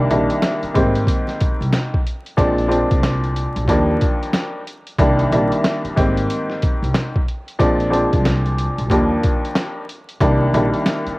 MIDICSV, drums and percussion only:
0, 0, Header, 1, 2, 480
1, 0, Start_track
1, 0, Key_signature, -3, "major"
1, 0, Tempo, 652174
1, 1750, Time_signature, 4, 2, 24, 8
1, 8234, End_track
2, 0, Start_track
2, 0, Title_t, "Drums"
2, 78, Note_on_c, 9, 42, 70
2, 152, Note_off_c, 9, 42, 0
2, 221, Note_on_c, 9, 42, 58
2, 294, Note_off_c, 9, 42, 0
2, 311, Note_on_c, 9, 38, 104
2, 311, Note_on_c, 9, 42, 98
2, 314, Note_on_c, 9, 40, 82
2, 384, Note_off_c, 9, 38, 0
2, 385, Note_off_c, 9, 42, 0
2, 388, Note_off_c, 9, 40, 0
2, 463, Note_on_c, 9, 42, 36
2, 536, Note_off_c, 9, 42, 0
2, 554, Note_on_c, 9, 36, 94
2, 555, Note_on_c, 9, 42, 73
2, 628, Note_off_c, 9, 36, 0
2, 628, Note_off_c, 9, 42, 0
2, 702, Note_on_c, 9, 42, 56
2, 775, Note_off_c, 9, 42, 0
2, 787, Note_on_c, 9, 36, 89
2, 796, Note_on_c, 9, 42, 98
2, 861, Note_off_c, 9, 36, 0
2, 870, Note_off_c, 9, 42, 0
2, 941, Note_on_c, 9, 38, 33
2, 948, Note_on_c, 9, 42, 35
2, 1015, Note_off_c, 9, 38, 0
2, 1022, Note_off_c, 9, 42, 0
2, 1034, Note_on_c, 9, 42, 75
2, 1039, Note_on_c, 9, 36, 96
2, 1108, Note_off_c, 9, 42, 0
2, 1113, Note_off_c, 9, 36, 0
2, 1193, Note_on_c, 9, 42, 43
2, 1267, Note_off_c, 9, 42, 0
2, 1270, Note_on_c, 9, 38, 103
2, 1273, Note_on_c, 9, 40, 84
2, 1278, Note_on_c, 9, 42, 90
2, 1344, Note_off_c, 9, 38, 0
2, 1347, Note_off_c, 9, 40, 0
2, 1352, Note_off_c, 9, 42, 0
2, 1427, Note_on_c, 9, 36, 88
2, 1501, Note_off_c, 9, 36, 0
2, 1520, Note_on_c, 9, 42, 64
2, 1594, Note_off_c, 9, 42, 0
2, 1664, Note_on_c, 9, 42, 48
2, 1738, Note_off_c, 9, 42, 0
2, 1750, Note_on_c, 9, 36, 113
2, 1755, Note_on_c, 9, 42, 89
2, 1824, Note_off_c, 9, 36, 0
2, 1828, Note_off_c, 9, 42, 0
2, 1901, Note_on_c, 9, 42, 35
2, 1975, Note_off_c, 9, 42, 0
2, 1999, Note_on_c, 9, 42, 73
2, 2072, Note_off_c, 9, 42, 0
2, 2141, Note_on_c, 9, 42, 56
2, 2144, Note_on_c, 9, 36, 98
2, 2215, Note_off_c, 9, 42, 0
2, 2218, Note_off_c, 9, 36, 0
2, 2233, Note_on_c, 9, 38, 105
2, 2233, Note_on_c, 9, 42, 100
2, 2236, Note_on_c, 9, 40, 82
2, 2306, Note_off_c, 9, 38, 0
2, 2306, Note_off_c, 9, 42, 0
2, 2309, Note_off_c, 9, 40, 0
2, 2384, Note_on_c, 9, 42, 36
2, 2457, Note_off_c, 9, 42, 0
2, 2476, Note_on_c, 9, 42, 77
2, 2549, Note_off_c, 9, 42, 0
2, 2622, Note_on_c, 9, 42, 56
2, 2695, Note_off_c, 9, 42, 0
2, 2707, Note_on_c, 9, 36, 88
2, 2716, Note_on_c, 9, 42, 95
2, 2781, Note_off_c, 9, 36, 0
2, 2789, Note_off_c, 9, 42, 0
2, 2953, Note_on_c, 9, 42, 77
2, 2959, Note_on_c, 9, 36, 97
2, 3027, Note_off_c, 9, 42, 0
2, 3033, Note_off_c, 9, 36, 0
2, 3112, Note_on_c, 9, 42, 45
2, 3186, Note_off_c, 9, 42, 0
2, 3189, Note_on_c, 9, 38, 104
2, 3193, Note_on_c, 9, 40, 81
2, 3197, Note_on_c, 9, 42, 89
2, 3263, Note_off_c, 9, 38, 0
2, 3266, Note_off_c, 9, 40, 0
2, 3271, Note_off_c, 9, 42, 0
2, 3440, Note_on_c, 9, 42, 65
2, 3513, Note_off_c, 9, 42, 0
2, 3584, Note_on_c, 9, 42, 48
2, 3657, Note_off_c, 9, 42, 0
2, 3670, Note_on_c, 9, 36, 110
2, 3674, Note_on_c, 9, 42, 88
2, 3744, Note_off_c, 9, 36, 0
2, 3748, Note_off_c, 9, 42, 0
2, 3821, Note_on_c, 9, 42, 35
2, 3895, Note_off_c, 9, 42, 0
2, 3919, Note_on_c, 9, 42, 75
2, 3992, Note_off_c, 9, 42, 0
2, 4062, Note_on_c, 9, 42, 54
2, 4136, Note_off_c, 9, 42, 0
2, 4152, Note_on_c, 9, 38, 105
2, 4152, Note_on_c, 9, 42, 101
2, 4156, Note_on_c, 9, 40, 83
2, 4226, Note_off_c, 9, 38, 0
2, 4226, Note_off_c, 9, 42, 0
2, 4229, Note_off_c, 9, 40, 0
2, 4304, Note_on_c, 9, 42, 35
2, 4377, Note_off_c, 9, 42, 0
2, 4395, Note_on_c, 9, 36, 99
2, 4396, Note_on_c, 9, 42, 74
2, 4469, Note_off_c, 9, 36, 0
2, 4470, Note_off_c, 9, 42, 0
2, 4543, Note_on_c, 9, 42, 57
2, 4617, Note_off_c, 9, 42, 0
2, 4637, Note_on_c, 9, 42, 96
2, 4710, Note_off_c, 9, 42, 0
2, 4781, Note_on_c, 9, 38, 35
2, 4855, Note_off_c, 9, 38, 0
2, 4874, Note_on_c, 9, 42, 76
2, 4880, Note_on_c, 9, 36, 97
2, 4948, Note_off_c, 9, 42, 0
2, 4953, Note_off_c, 9, 36, 0
2, 5033, Note_on_c, 9, 42, 44
2, 5107, Note_off_c, 9, 42, 0
2, 5111, Note_on_c, 9, 38, 107
2, 5114, Note_on_c, 9, 40, 85
2, 5119, Note_on_c, 9, 42, 89
2, 5184, Note_off_c, 9, 38, 0
2, 5188, Note_off_c, 9, 40, 0
2, 5192, Note_off_c, 9, 42, 0
2, 5267, Note_on_c, 9, 36, 89
2, 5341, Note_off_c, 9, 36, 0
2, 5360, Note_on_c, 9, 42, 63
2, 5434, Note_off_c, 9, 42, 0
2, 5504, Note_on_c, 9, 42, 49
2, 5578, Note_off_c, 9, 42, 0
2, 5591, Note_on_c, 9, 36, 109
2, 5595, Note_on_c, 9, 42, 91
2, 5664, Note_off_c, 9, 36, 0
2, 5669, Note_off_c, 9, 42, 0
2, 5741, Note_on_c, 9, 42, 36
2, 5815, Note_off_c, 9, 42, 0
2, 5839, Note_on_c, 9, 42, 72
2, 5913, Note_off_c, 9, 42, 0
2, 5982, Note_on_c, 9, 42, 56
2, 5985, Note_on_c, 9, 36, 97
2, 6056, Note_off_c, 9, 42, 0
2, 6058, Note_off_c, 9, 36, 0
2, 6073, Note_on_c, 9, 38, 101
2, 6073, Note_on_c, 9, 42, 100
2, 6077, Note_on_c, 9, 40, 81
2, 6147, Note_off_c, 9, 38, 0
2, 6147, Note_off_c, 9, 42, 0
2, 6150, Note_off_c, 9, 40, 0
2, 6223, Note_on_c, 9, 42, 38
2, 6297, Note_off_c, 9, 42, 0
2, 6317, Note_on_c, 9, 42, 74
2, 6390, Note_off_c, 9, 42, 0
2, 6463, Note_on_c, 9, 42, 56
2, 6537, Note_off_c, 9, 42, 0
2, 6548, Note_on_c, 9, 36, 86
2, 6557, Note_on_c, 9, 42, 94
2, 6621, Note_off_c, 9, 36, 0
2, 6630, Note_off_c, 9, 42, 0
2, 6794, Note_on_c, 9, 42, 75
2, 6800, Note_on_c, 9, 36, 98
2, 6868, Note_off_c, 9, 42, 0
2, 6873, Note_off_c, 9, 36, 0
2, 6953, Note_on_c, 9, 42, 46
2, 7026, Note_off_c, 9, 42, 0
2, 7030, Note_on_c, 9, 38, 106
2, 7033, Note_on_c, 9, 40, 83
2, 7038, Note_on_c, 9, 42, 89
2, 7104, Note_off_c, 9, 38, 0
2, 7107, Note_off_c, 9, 40, 0
2, 7112, Note_off_c, 9, 42, 0
2, 7280, Note_on_c, 9, 42, 64
2, 7353, Note_off_c, 9, 42, 0
2, 7424, Note_on_c, 9, 42, 50
2, 7498, Note_off_c, 9, 42, 0
2, 7510, Note_on_c, 9, 36, 109
2, 7514, Note_on_c, 9, 42, 89
2, 7584, Note_off_c, 9, 36, 0
2, 7588, Note_off_c, 9, 42, 0
2, 7758, Note_on_c, 9, 42, 72
2, 7832, Note_off_c, 9, 42, 0
2, 7901, Note_on_c, 9, 42, 56
2, 7975, Note_off_c, 9, 42, 0
2, 7991, Note_on_c, 9, 38, 103
2, 7991, Note_on_c, 9, 42, 101
2, 7995, Note_on_c, 9, 40, 85
2, 8065, Note_off_c, 9, 38, 0
2, 8065, Note_off_c, 9, 42, 0
2, 8068, Note_off_c, 9, 40, 0
2, 8144, Note_on_c, 9, 42, 37
2, 8217, Note_off_c, 9, 42, 0
2, 8234, End_track
0, 0, End_of_file